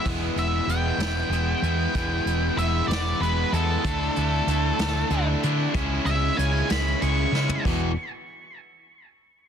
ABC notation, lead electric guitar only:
X:1
M:6/8
L:1/8
Q:3/8=63
K:Emix
V:1 name="Lead electric guitar"
z e =g4- | =g2 e d B A- | A4- A z | z e g b c'2 |
z6 |]